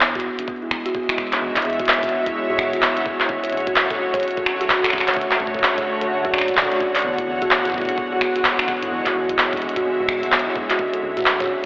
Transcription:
Already playing: analog synth bass E2, ambient pad G#3 F#4
0.01 kalimba B3, ambient pad E5, clap
0.06 ambient pad D3
0.15 kalimba F#4, ambient pad C#5, kick
0.20 closed hi-hat
0.24 kalimba B3
0.39 analog synth bass E1, kalimba D4, closed hi-hat
0.48 kalimba B3, kick
0.62 kalimba E4
0.71 kalimba B3, finger snap, kick
0.86 kalimba F#4, closed hi-hat
0.95 kalimba B3, kick
1.09 kalimba E4, finger snap, closed hi-hat
1.18 analog synth bass E1, kalimba B3, finger snap, kick
1.33 kalimba D4, clap, closed hi-hat
1.41 analog synth bass E2, kalimba B3
1.56 kalimba E4, kick, clap, closed hi-hat
1.62 analog synth bass E2, kalimba B3, closed hi-hat
1.65 closed hi-hat
1.70 closed hi-hat
1.73 closed hi-hat
1.79 kalimba F#4, kick, closed hi-hat
1.86 kalimba B3, clap, closed hi-hat
1.93 closed hi-hat
2.03 kalimba D4, kick, closed hi-hat
2.09 kalimba B3, closed hi-hat
2.26 analog synth bass E1, kalimba E4, kick, closed hi-hat
2.35 kalimba B3
2.50 analog synth bass G#2, kalimba F#4
2.59 kalimba B3, finger snap, kick
2.73 analog synth bass B1, kalimba E4, closed hi-hat
2.82 kalimba B3, kick, clap
2.97 kalimba D4, closed hi-hat
3.06 analog synth bass B1, kalimba B3, kick
3.20 kalimba E4, clap
3.29 analog synth bass D2, ambient pad A3, kalimba C#4, kick
3.44 kalimba C#5, closed hi-hat
3.50 analog synth bass D2, kalimba C#4, closed hi-hat
3.53 closed hi-hat
3.57 closed hi-hat
3.60 closed hi-hat
3.67 kalimba F#4, kick, closed hi-hat
3.76 kalimba C#4, clap
3.90 kalimba A4, kick, closed hi-hat
3.99 kalimba C#4
4.14 analog synth bass D1, kalimba C#5, kick, closed hi-hat
4.20 kalimba C#4, closed hi-hat
4.23 closed hi-hat
4.28 closed hi-hat
4.31 closed hi-hat
4.37 kalimba A4, kick
4.46 kalimba C#4, finger snap
4.61 kalimba F#4, closed hi-hat
4.66 kalimba C#4, ambient pad F#5, kick, clap
4.84 kalimba A4, finger snap, closed hi-hat
4.90 analog synth bass D1, kalimba C#4, finger snap, kick
4.93 finger snap
4.98 finger snap
5.00 finger snap
5.08 kalimba C#5, clap, closed hi-hat
5.14 analog synth bass D2, kalimba C#4, kick, closed hi-hat
5.21 closed hi-hat
5.31 kalimba F#4, clap
5.40 analog synth bass D2, kalimba C#4, kick
5.47 kick
5.54 kalimba A4, kick
5.59 kick
5.63 kalimba C#4, clap
5.78 kalimba C#5, kick, closed hi-hat
5.87 kalimba C#4
6.01 analog synth bass D1, kalimba A4, closed hi-hat
6.10 kalimba C#4
6.25 analog synth bass F#2, kalimba F#4, kick
6.34 kalimba D5, finger snap
6.38 finger snap
6.41 finger snap
6.48 analog synth bass A1, kalimba D5, kick, closed hi-hat
6.54 kick, clap
6.57 kalimba F#4, kick
6.62 kick
6.65 kick
6.72 kalimba D4, closed hi-hat
6.81 analog synth bass D1, kalimba C#4, kick
6.95 kalimba D5, clap, closed hi-hat
6.97 closed hi-hat
6.99 closed hi-hat
7.00 closed hi-hat
7.02 analog synth bass E2, ambient pad G#3, kalimba B3, closed hi-hat
7.18 kalimba E4, kick, closed hi-hat
7.27 analog synth bass E2, kalimba B3
7.42 kalimba F#4, kick, closed hi-hat
7.51 kalimba B3, clap
7.65 kalimba E4, kick, closed hi-hat
7.68 kick
7.70 kick
7.72 kick
7.74 kalimba B3, kick
7.78 kick
7.82 kick
7.85 analog synth bass E1, kalimba D4, kick, closed hi-hat, mid tom
7.98 kalimba B3, kick
8.12 kalimba F#4
8.21 kalimba B3, finger snap, kick
8.36 kalimba F#4, closed hi-hat
8.45 kalimba B3, kick, clap
8.51 ambient pad E5
8.59 kalimba D4, finger snap, closed hi-hat
8.68 analog synth bass E1, kalimba B3, finger snap, kick
8.83 kalimba E4, closed hi-hat, mid tom
8.91 analog synth bass E2, kalimba B3
9.06 kalimba F#4, kick, clap, closed hi-hat
9.15 analog synth bass E2, kalimba B3
9.29 kalimba E4, kick, closed hi-hat
9.38 kalimba B3, clap
9.53 kalimba D4, kick, closed hi-hat
9.57 closed hi-hat
9.62 kalimba B3, closed hi-hat
9.69 closed hi-hat
9.76 analog synth bass E1, kalimba F#4, kick, closed hi-hat, mid tom
9.85 kalimba B3
10.00 analog synth bass G#2, kalimba F#4
10.09 kalimba B3, finger snap, kick
10.23 analog synth bass B1, kalimba D4, closed hi-hat
10.32 kalimba B3, kick, clap
10.39 closed hi-hat
10.47 kalimba E4
10.56 analog synth bass B1, kalimba B3, kick
10.70 kalimba F#4, clap, closed hi-hat
10.79 analog synth bass D2, ambient pad A3, kalimba C#4, kick
10.94 kalimba A4, closed hi-hat
11.01 analog synth bass D2, kalimba C#4, ambient pad F#5
11.17 kalimba F#4, kick, closed hi-hat
11.19 kick
11.21 kick
11.22 kick
11.24 kalimba C#4, kick, clap
11.40 kalimba C#5, kick, closed hi-hat
11.42 kick
11.44 kick
11.46 kick
11.48 kalimba C#4, kick

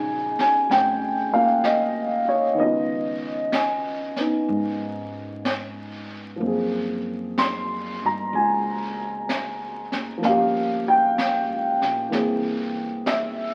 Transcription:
Already playing: upright bass A#1, upright piano C#3 G#3 D#4 G#5
0.39 upright piano G#5, muted upright bass stroke, snare
0.70 upright bass F1, upright piano G5, brush sweep, snare
1.33 upright piano A#3 C#4 F4 F5
1.64 upright piano D#5, brush sweep, snare, hi-hat pedal
2.27 upright piano C#5, muted upright bass stroke
2.54 upright piano D#3 B3
2.58 upright bass C#2, upright piano C#4 D#5, brush sweep
2.64 upright piano F4
3.52 upright piano G#5, brush sweep, snare, hi-hat pedal
4.16 upright piano B3, snare
4.21 upright piano D#4
4.48 upright bass G#2, brush sweep
5.45 brush sweep, snare, hi-hat pedal
6.36 upright piano F3 A#3
6.40 upright bass F#2, upright piano C4, brush sweep
6.47 upright piano G#4
7.38 upright piano C6, brush sweep, snare, hi-hat pedal
8.03 upright bass G2, upright piano A#5
8.33 upright bass C#2, upright piano G#5, brush sweep
9.29 brush sweep, snare, hi-hat pedal
9.92 upright bass F#1, snare
10.18 upright piano F3 A#3
10.23 upright bass G1, upright piano C#4 F5, brush sweep, snare
10.29 upright piano G4
10.88 upright piano G5
11.18 brush sweep, snare, hi-hat pedal
11.50 upright bass C#2
11.81 upright bass A#1, snare
12.09 upright bass C2, upright piano E3 A#3 C4, brush sweep, snare
12.14 upright piano G#4
13.06 upright piano E5, brush sweep, snare, hi-hat pedal

